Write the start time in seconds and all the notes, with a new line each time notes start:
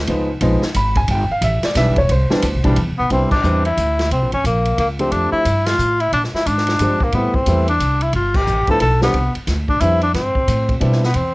0.07 C#2 F3 G#3 B3 D#4, kick, ride
0.41 A#1 F3 G#3 B3 D#4, kick, ride
0.62 muted upright bass stroke, snare
0.74 G#1 B5, kick, hi-hat pedal, ride
0.95 G#5, kick, ride
1.08 G1 G5, kick, ride
1.30 F5, muted upright bass stroke
1.41 A1 E5, kick, hi-hat pedal, ride
1.63 D5, snare, ride
1.75 B1 E3 G3 B3 D4 E5, kick, snare, hi-hat pedal, ride
1.87 G1
1.96 E1 C#5, kick, ride
2.09 C2 C5, kick, ride
2.30 E3 G3 B3 D4, snare
2.42 D2, kick, hi-hat pedal, ride
2.54 C2
2.64 B1 E3 G3 B3 D4, kick, ride
2.76 E2, kick, ride
2.88 C2
2.98 B1 B3
3.10 C2 G3 B3 C4 D4 E4, kick, ride
3.31 D4, muted upright bass stroke, kick, crash
3.43 E2 G3 B3 C4 D4 E4, hi-hat pedal
3.65 E4, ride
3.77 D2, kick, hi-hat pedal, ride
3.99 snare, ride
4.11 C2 C4, kick, ride
4.22 A#1
4.32 G1 C#4, ride
4.44 A#1 A#3, kick, hi-hat pedal, ride
4.65 ride
4.78 C#2 A#3, kick, ride
4.99 F3 A3 C4 D4 G4, ride
5.11 F2 D4, kick, ride
5.32 E4, muted upright bass stroke
5.45 G2, kick, hi-hat pedal, ride
5.66 F4, snare, ride
5.78 A2, hi-hat pedal
6.00 E4, ride
6.12 A#2 D4, kick, ride
6.24 snare
6.33 E4, muted upright bass stroke, snare
6.46 G#2 D4, kick, hi-hat pedal, ride
6.58 snare
6.67 snare, ride
6.79 G2 F3 G#3 C4 D4 G4, kick, hi-hat pedal, ride
7.00 A#3, muted upright bass stroke, kick
7.12 A2 G3 A3 B3 C4 E4, kick, ride
7.34 C4, muted upright bass stroke, kick
7.46 E2 G3 A3 B3 C4 E4, kick, hi-hat pedal, ride
7.68 D4, ride
7.80 C2, kick, hi-hat pedal, ride
8.01 E4, ride
8.13 G1 F4, kick, ride
8.34 G4, kick, crash
8.47 A1, hi-hat pedal
8.67 F3 A3 B3 D4 E4 A4, muted upright bass stroke, kick, ride
8.80 B1 A4, ride
9.02 G3 B3 C4 D4 G4, snare
9.13 C2, kick, ride
9.35 muted upright bass stroke, ride
9.47 D2, kick, snare, hi-hat pedal, ride
9.68 D4, kick
9.81 F2 G3 B3 C4 D4 E4, kick, hi-hat pedal, ride
10.01 D4, ride
10.14 G2 C4, kick, snare, ride
10.35 muted upright bass stroke, kick
10.47 A2, kick, hi-hat pedal, ride
10.69 kick, ride
10.80 B2 G3 B3 C4 D4 E4, kick, ride
10.92 snare
11.04 B3, snare
11.14 E2 C4, kick, ride